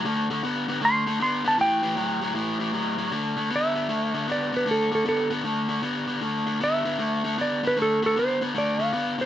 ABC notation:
X:1
M:4/4
L:1/8
Q:"Swing" 1/4=155
K:Dmix
V:1 name="Electric slide guitar"
z4 c'2 c' a | g6 z2 | z2 e4 d B | A A A z4 z |
z2 e4 d B | A A c z d =f2 c |]
V:2 name="Overdriven electric guitar" clef=bass
[D,A,] [D,A,] [D,B,] [D,B,] [D,A,] [D,A,] [D,B,] [D,B,] | [A,,E,] [A,,E,] [A,,F,] [A,,F,] [A,,E,] [A,,E,] [A,,F,] [A,,F,] | [D,A,] [D,A,] [D,B,] [D,B,] [D,A,] [D,A,] [D,B,] [D,B,] | [D,A,] [D,A,] [D,B,] [D,B,] [D,A,] [D,A,] [D,B,] [D,B,] |
[D,A,] [D,A,] [D,B,] [D,B,] [D,A,] [D,A,] [D,B,] [D,B,] | [D,A,] [D,A,] [D,B,] [D,B,] [D,A,] [D,A,] [D,B,] [D,B,] |]